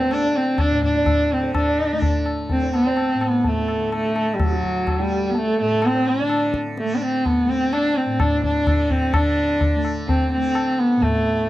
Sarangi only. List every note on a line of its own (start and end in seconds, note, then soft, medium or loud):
0.00 0.14 C4 medium
0.12 0.37 D4 medium
0.36 0.61 C4 medium
0.60 0.83 D4 medium
0.84 1.34 D4 medium
1.32 1.55 C4 medium
1.55 2.22 D4 medium
2.51 2.73 C4 medium
2.74 2.85 B3 medium
2.85 3.24 C4 medium
3.23 3.39 B3 medium
3.39 3.49 B3 medium
3.48 3.94 A3 medium
3.95 4.35 A3 medium
4.34 4.44 G3 medium
4.43 4.92 F#3 medium
4.90 5.32 G3 medium
5.30 5.39 B3 medium
5.38 5.60 A3 medium
5.61 5.87 A3 medium
5.85 6.10 C4 medium
6.09 6.55 D4 medium
6.79 6.96 A3 medium
6.95 7.04 D4 medium
7.02 7.27 C4 medium
7.25 7.51 B3 medium
7.49 7.74 C4 medium
7.73 7.98 D4 medium
7.96 8.22 C4 medium
8.20 8.43 D4 medium
8.44 8.93 D4 medium
8.91 9.16 C4 medium
9.14 9.85 D4 medium
10.08 10.30 C4 medium
10.32 10.81 C4 medium
10.79 11.04 B3 medium
11.02 11.49 A3 medium